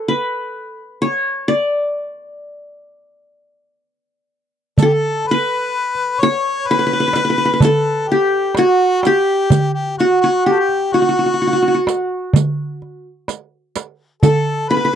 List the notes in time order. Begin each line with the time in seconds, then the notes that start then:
Already playing: A4
0.08 B4
1.02 C#5
1.48 D5
4.78 A4, riq, darbuka dum
4.82 G4 A4
4.93 A4
5.25 B4, darbuka ka
5.31 B4
5.95 darbuka ka
6.19 C#5, riq, darbuka ka
6.23 C#5
6.67 B4
6.79 B4
6.87 B4
6.93 B4
7.00 B4
7.08 B4
7.13 B4, riq, darbuka tek
7.25 B4
7.30 B4
7.38 B4
7.45 B4
7.54 B4
7.60 A4, riq, darbuka dum
7.64 A4
8.08 G4, darbuka ka
8.55 F#4, riq, darbuka tek
9.03 G4, riq, darbuka tek
9.50 riq, darbuka dum
9.74 G4
9.97 F#4, riq, darbuka ka
10.21 F#4
10.45 G4
10.52 A4
10.59 G4
10.69 darbuka ka
10.92 F#4, riq, darbuka ka
11.02 F#4
11.09 F#4
11.19 F#4
11.26 F#4
11.34 F#4
11.42 F#4
11.47 F#4
11.53 F#4
11.62 F#4
11.68 F#4
11.74 F#4
11.87 riq, darbuka tek
12.33 riq, darbuka dum
12.82 darbuka ka
13.28 riq, darbuka tek
13.76 riq, darbuka tek
14.23 A4, riq, darbuka dum
14.69 B4, riq, darbuka ka
14.77 B4
14.85 B4